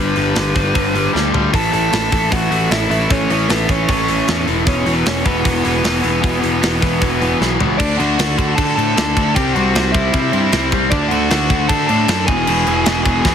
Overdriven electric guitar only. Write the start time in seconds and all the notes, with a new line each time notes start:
Already playing: G2 D3 G3
0.16 G2 D3 G3
0.36 G2 D3 G3
0.55 G2 D3 G3
0.74 G2 D3 G3
0.95 G2 D3 G3
1.14 G2 D3 G3
1.33 G2 D3 G3
1.53 A2 E3 A3
1.71 A2 E3 A3
1.91 A2 E3 A3
2.11 A2 E3 A3
2.30 A2 E3 A3
2.51 A2 E3 A3
2.71 A2 E3 A3
2.90 A2 E3 A3
3.10 A2 E3 A3
3.30 A2 E3 A3
3.49 A2 E3 A3
3.68 A2 E3 A3
3.88 A2 E3 A3
4.08 A2 E3 A3
4.28 A2 E3 A3
4.47 A2 E3 A3
4.66 E2 B2 E3
4.86 E2 B2 E3
5.06 E2 B2 E3
5.25 E2 B2 E3
5.45 E2 B2 E3
5.64 E2 B2 E3
5.84 E2 B2 E3
6.02 E2 B2 E3
6.22 E2 B2 E3
6.42 E2 B2 E3
6.61 E2 B2 E3
6.81 E2 B2 E3
7.01 E2 B2 E3
7.20 E2 B2 E3
7.40 E2 B2 E3
7.59 E2 B2 E3
7.79 D3 A3 D4
8.00 D3 A3 D4
8.19 D3 A3 D4
8.38 D3 A3 D4
8.57 D3 A3 D4
8.77 D3 A3 D4
8.96 D3 A3 D4
9.17 D3 A3 D4
9.36 C3 G3 C4
9.56 C3 G3 C4
9.74 C3 G3 C4
9.94 C3 G3 C4
10.13 C3 G3 C4
10.32 C3 G3 C4
10.52 C3 G3 C4
10.72 C3 G3 C4
10.91 D3 A3 D4
11.11 D3 A3 D4
11.31 D3 A3 D4
11.50 D3 A3 D4
11.69 D3 A3 D4
11.89 D3 A3 D4
12.09 D3 A3 D4
12.28 E2 B2 E3
12.48 E2 B2 E3
12.67 E2 B2 E3
12.87 E2 B2 E3
13.06 E2 B2 E3
13.25 E2 B2 E3